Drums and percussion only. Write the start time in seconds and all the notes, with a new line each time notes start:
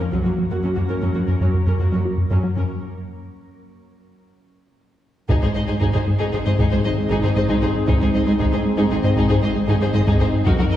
0.12 taiko
5.29 taiko
5.81 taiko
6.59 taiko
7.49 taiko
7.88 taiko
8.40 taiko
9.17 taiko
10.07 taiko
10.46 taiko